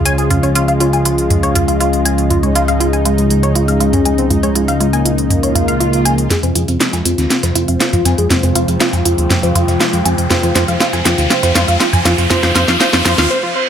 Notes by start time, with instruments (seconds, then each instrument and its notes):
Already playing: analog synth bass C#2, analog synth pad C#3 F3 G#3 F4, ambient pad C#4 G#4 D#5
0.05 analog synth lead C#4, synth arpeggio sound G#5, closed hi-hat
0.18 analog synth lead G#4, closed hi-hat
0.30 analog synth lead C#4, synth arpeggio sound F4, closed hi-hat, mid tom
0.43 analog synth lead C#4, synth arpeggio sound C#5, closed hi-hat
0.55 analog synth lead C#4, synth arpeggio sound F4, closed hi-hat
0.68 synth arpeggio sound F5, closed hi-hat
0.80 analog synth lead C#4, synth arpeggio sound F4, closed hi-hat
0.93 analog synth lead F4, synth arpeggio sound G#5, closed hi-hat
1.05 synth arpeggio sound F4, closed hi-hat
1.18 closed hi-hat
1.30 closed hi-hat, mid tom
1.43 synth arpeggio sound C#5, closed hi-hat
1.55 synth arpeggio sound F4, closed hi-hat, mid tom
1.68 synth arpeggio sound F5, closed hi-hat
1.80 synth arpeggio sound F4, closed hi-hat
1.93 closed hi-hat
2.05 synth arpeggio sound G#5, closed hi-hat
2.18 closed hi-hat
2.30 analog synth pad D#4, synth arpeggio sound F4, analog synth lead F4, closed hi-hat, mid tom
2.43 analog synth lead G#3, synth arpeggio sound C#5, closed hi-hat
2.55 synth arpeggio sound F4, analog synth lead F4, closed hi-hat
2.68 analog synth lead G#3, synth arpeggio sound F5, closed hi-hat
2.80 analog synth lead G#3, synth arpeggio sound F4, closed hi-hat
2.93 synth arpeggio sound G#5, closed hi-hat
3.05 analog synth lead G#3, synth arpeggio sound F4, closed hi-hat
3.18 analog synth lead G#3, closed hi-hat
3.30 analog synth lead G#3, closed hi-hat
3.43 synth arpeggio sound C#5, closed hi-hat
3.55 analog synth lead G#3, synth arpeggio sound F4, closed hi-hat
3.68 analog synth lead G#3, synth arpeggio sound F5, closed hi-hat
3.80 analog synth lead G#3, synth arpeggio sound F4, closed hi-hat
3.93 analog synth lead C#4, closed hi-hat, mid tom
4.05 analog synth lead G#3, synth arpeggio sound G#5, closed hi-hat
4.18 analog synth lead C4, closed hi-hat
4.30 analog synth lead G#3, synth arpeggio sound F4, closed hi-hat, mid tom
4.43 analog synth lead G#3, synth arpeggio sound C#5, closed hi-hat
4.55 analog synth lead G#3, synth arpeggio sound F4, closed hi-hat
4.68 synth arpeggio sound F5, closed hi-hat
4.80 analog synth lead G#3, synth arpeggio sound F4, closed hi-hat
4.93 analog synth lead A#3, synth arpeggio sound G#5, closed hi-hat
5.05 synth arpeggio sound F4, closed hi-hat
5.18 closed hi-hat
5.30 closed hi-hat, mid tom, swell
5.43 synth arpeggio sound C#5, closed hi-hat
5.55 synth arpeggio sound F4, closed hi-hat, mid tom
5.68 synth arpeggio sound F5, closed hi-hat
5.80 synth arpeggio sound F4, closed hi-hat
5.93 closed hi-hat
6.05 synth arpeggio sound G#5, closed hi-hat
6.18 closed hi-hat
6.30 analog synth pad C3 F3 G#3 F4, synth arpeggio sound F4, ambient pad F4, analog synth lead G#4, snare, closed hi-hat, mid tom, riser
6.43 analog synth bass F2, analog synth lead C4, synth arpeggio sound C5, ambient pad C5, closed hi-hat
6.55 analog synth bass F2, synth arpeggio sound F4, analog synth lead G#4, closed hi-hat
6.68 analog synth bass F2, analog synth lead C4, synth arpeggio sound F5, closed hi-hat
6.80 analog synth lead C4, synth arpeggio sound F4, snare, closed hi-hat
6.93 analog synth bass F2, synth arpeggio sound G#5, snare, closed hi-hat
7.05 analog synth bass F2, analog synth lead C4, synth arpeggio sound F4, closed hi-hat
7.18 analog synth bass D#2, analog synth lead C4, snare, closed hi-hat
7.30 analog synth lead C4, snare, closed hi-hat
7.43 analog synth bass F2, synth arpeggio sound C5, snare, closed hi-hat
7.55 analog synth bass F2, analog synth lead C4, synth arpeggio sound F4, closed hi-hat
7.68 analog synth bass F2, analog synth lead C4, synth arpeggio sound F5, closed hi-hat
7.80 analog synth lead C4, synth arpeggio sound F4, ambient pad G5, snare, closed hi-hat
7.93 analog synth bass F2, analog synth lead F4, closed hi-hat, mid tom
8.05 analog synth bass F2, analog synth lead C4, synth arpeggio sound G#5, snare, closed hi-hat
8.18 analog synth bass F2, analog synth lead G#4, closed hi-hat
8.30 analog synth lead C4, synth arpeggio sound F4, snare, closed hi-hat, mid tom
8.43 analog synth bass F2, analog synth lead C4, synth arpeggio sound C5, closed hi-hat
8.55 analog synth bass F2, analog synth lead C4, synth arpeggio sound F4, closed hi-hat
8.68 analog synth bass F2, synth arpeggio sound F5, closed hi-hat
8.80 analog synth lead C4, synth arpeggio sound F4, snare, closed hi-hat
8.93 analog synth bass F2, analog synth lead F4, synth arpeggio sound G#5, snare, closed hi-hat
9.05 analog synth bass F2, synth arpeggio sound F4, closed hi-hat
9.18 analog synth bass D#2, closed hi-hat
9.30 snare, closed hi-hat, mid tom
9.43 analog synth bass F2, synth arpeggio sound C5, closed hi-hat
9.55 analog synth bass F2, synth arpeggio sound F4, closed hi-hat, mid tom
9.68 analog synth bass F2, synth arpeggio sound F5, snare, closed hi-hat
9.80 synth arpeggio sound F4, snare, closed hi-hat
9.93 analog synth bass F2, closed hi-hat
10.05 analog synth bass F2, synth arpeggio sound G#5, closed hi-hat
10.18 analog synth bass F2, closed hi-hat
10.30 synth arpeggio sound F4, analog synth lead C5, snare, closed hi-hat, mid tom
10.43 analog synth bass F2, analog synth lead F4, synth arpeggio sound C5, closed hi-hat
10.55 analog synth bass F2, synth arpeggio sound F4, analog synth lead C5, snare, closed hi-hat
10.68 analog synth bass F2, analog synth lead F4, synth arpeggio sound F5, closed hi-hat
10.80 synth arpeggio sound F4, analog synth lead F4, snare, closed hi-hat
10.93 analog synth bass F2, synth arpeggio sound G#5, snare, closed hi-hat
11.05 analog synth bass F2, analog synth lead F4, synth arpeggio sound F4, snare, closed hi-hat
11.18 analog synth bass D#2, analog synth lead F4, snare, closed hi-hat
11.30 synth arpeggio sound F4, analog synth lead C5, snare, closed hi-hat
11.43 analog synth bass F2, analog synth lead F4, synth arpeggio sound C5, snare, closed hi-hat
11.55 analog synth bass F2, synth arpeggio sound F4, analog synth lead C5, snare, closed hi-hat
11.68 analog synth bass F2, analog synth lead F4, synth arpeggio sound F5, closed hi-hat
11.80 analog synth lead F4, synth arpeggio sound F4, snare, closed hi-hat
11.93 analog synth bass F2, synth arpeggio sound G#5, closed hi-hat, mid tom
12.05 analog synth bass F2, synth arpeggio sound F4, analog synth lead F4, snare, closed hi-hat
12.18 analog synth bass F2, analog synth lead F4, closed hi-hat
12.30 synth arpeggio sound F4, analog synth lead C5, snare, closed hi-hat, mid tom
12.43 analog synth bass F2, analog synth lead F4, synth arpeggio sound C5, snare, closed hi-hat
12.55 analog synth bass F2, synth arpeggio sound F4, analog synth lead C5, snare, closed hi-hat
12.68 analog synth bass F2, analog synth lead F4, synth arpeggio sound F5, snare, closed hi-hat
12.80 synth arpeggio sound F4, analog synth lead C5, snare, closed hi-hat
12.93 analog synth bass F2, analog synth lead F4, synth arpeggio sound C5, snare, closed hi-hat
13.05 analog synth bass F2, synth arpeggio sound F4, analog synth lead C5, snare, closed hi-hat
13.18 analog synth bass D#2, analog synth lead F4, synth arpeggio sound F5, snare, closed hi-hat
13.30 analog synth lead C5, reverse cymbal
13.43 analog synth lead F4
13.55 analog synth lead C5